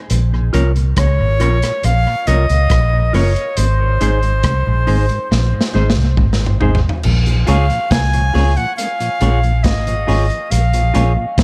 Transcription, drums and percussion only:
0.10 closed hi-hat
0.54 closed hi-hat
0.76 closed hi-hat
0.96 kick, cross-stick, closed hi-hat
1.40 closed hi-hat
1.62 cross-stick, closed hi-hat
1.83 closed hi-hat
2.27 closed hi-hat
2.49 closed hi-hat
2.70 kick, cross-stick, closed hi-hat
3.14 open hi-hat
3.36 closed hi-hat
3.57 closed hi-hat
4.01 closed hi-hat
4.23 closed hi-hat
4.43 kick, cross-stick, closed hi-hat
4.87 open hi-hat
5.09 closed hi-hat
5.32 snare
5.61 snare
5.90 snare
6.17 kick, mid tom
6.33 snare
6.46 mid tom
6.61 floor tom
6.75 floor tom
6.89 floor tom
7.03 crash
7.26 closed hi-hat
7.47 closed hi-hat
7.70 closed hi-hat
7.91 kick, snare, closed hi-hat
8.13 closed hi-hat
8.35 open hi-hat
8.57 closed hi-hat
8.78 closed hi-hat
9.00 closed hi-hat
9.21 closed hi-hat
9.43 closed hi-hat
9.64 kick, snare, closed hi-hat
9.87 closed hi-hat
10.08 open hi-hat
10.30 closed hi-hat
10.51 closed hi-hat
10.73 closed hi-hat
10.94 closed hi-hat
11.38 kick, snare, closed hi-hat

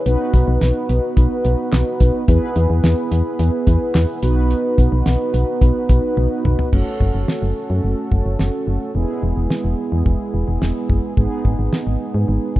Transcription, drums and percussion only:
0.06 closed hi-hat
0.34 kick, closed hi-hat
0.61 snare, closed hi-hat
0.89 closed hi-hat
1.17 kick, closed hi-hat
1.45 closed hi-hat
1.72 snare, clap, closed hi-hat
2.00 kick, closed hi-hat
2.28 kick, closed hi-hat
2.56 closed hi-hat
2.84 snare, closed hi-hat
3.12 closed hi-hat
3.39 closed hi-hat
3.67 kick, closed hi-hat
3.95 snare, clap, closed hi-hat
4.23 closed hi-hat
4.51 closed hi-hat
4.78 kick, closed hi-hat
5.06 snare, closed hi-hat
5.34 closed hi-hat
5.61 kick, closed hi-hat
5.89 kick, closed hi-hat
6.17 high tom
6.45 mid tom
6.59 floor tom
6.73 kick, crash
7.00 kick
7.28 snare
8.12 kick
8.39 snare
9.50 snare
10.06 kick
10.62 snare
10.90 kick
11.17 kick
11.45 kick
11.73 snare
12.56 kick

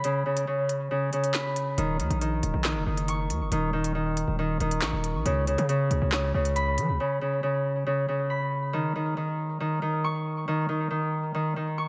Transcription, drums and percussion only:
0.04 closed hi-hat
0.37 closed hi-hat
0.69 closed hi-hat
1.13 closed hi-hat
1.24 closed hi-hat
1.34 snare, clap
1.56 closed hi-hat
1.78 closed hi-hat
2.00 closed hi-hat
2.11 closed hi-hat
2.21 closed hi-hat
2.43 closed hi-hat
2.64 snare, clap
2.97 closed hi-hat
3.08 closed hi-hat
3.30 closed hi-hat
3.52 closed hi-hat
3.84 closed hi-hat
4.17 closed hi-hat
4.60 closed hi-hat
4.71 closed hi-hat
4.82 snare, clap
5.04 closed hi-hat
5.26 closed hi-hat
5.47 closed hi-hat
5.58 closed hi-hat
5.69 closed hi-hat
5.91 closed hi-hat
6.12 snare, clap
6.45 closed hi-hat
6.56 closed hi-hat
6.78 closed hi-hat

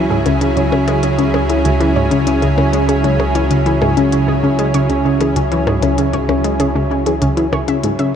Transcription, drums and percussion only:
0.26 closed hi-hat, percussion blips
0.41 closed hi-hat
0.57 closed hi-hat
0.72 percussion blips
0.88 closed hi-hat, percussion blips
1.03 closed hi-hat
1.19 closed hi-hat
1.34 percussion blips
1.50 closed hi-hat
1.65 closed hi-hat
1.81 closed hi-hat
2.11 closed hi-hat
2.27 closed hi-hat
2.42 closed hi-hat
2.58 percussion blips
2.73 closed hi-hat
2.89 closed hi-hat
3.04 closed hi-hat
3.20 percussion blips
3.35 closed hi-hat
3.51 closed hi-hat
3.66 closed hi-hat
3.82 percussion blips
3.97 closed hi-hat
4.12 closed hi-hat
4.59 closed hi-hat
4.74 closed hi-hat
4.90 closed hi-hat
5.21 closed hi-hat, percussion blips
5.36 closed hi-hat
5.52 closed hi-hat
5.67 percussion blips
5.83 closed hi-hat, percussion blips
5.98 closed hi-hat
6.13 closed hi-hat
6.29 percussion blips
6.44 closed hi-hat
6.60 closed hi-hat
7.06 closed hi-hat
7.22 closed hi-hat
7.37 closed hi-hat
7.53 percussion blips
7.68 closed hi-hat
7.84 closed hi-hat
7.99 closed hi-hat

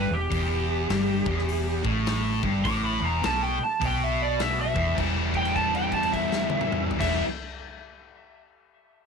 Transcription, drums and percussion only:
0.32 kick, open hi-hat
0.90 snare, open hi-hat
1.26 kick
1.38 snare
1.49 open hi-hat
1.85 kick
2.06 snare, open hi-hat
2.43 kick
2.65 kick, open hi-hat
3.23 snare, open hi-hat
3.82 kick, open hi-hat
4.40 snare, open hi-hat
4.76 kick
4.98 kick, crash
5.34 kick, crash
5.45 crash
5.56 kick, crash
5.75 crash
5.92 kick, crash
6.03 crash
6.14 kick, crash
6.32 snare
6.50 high tom
6.61 mid tom
6.72 mid tom
6.91 floor tom
7.01 kick, snare, crash

